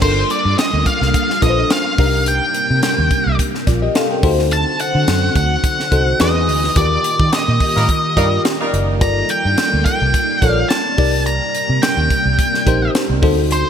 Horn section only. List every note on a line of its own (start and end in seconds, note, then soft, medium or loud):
7.76 7.87 G3 medium
7.76 7.87 A#3 medium
7.76 7.87 D#4 medium
7.76 7.87 A#4 medium
8.17 8.27 G3 medium
8.17 8.27 A#3 loud
8.17 8.26 D#4 medium
8.17 8.27 A#4 loud
8.60 8.99 G3 medium
8.60 8.99 A#3 medium
8.60 8.99 D#4 medium
8.60 8.99 A#4 loud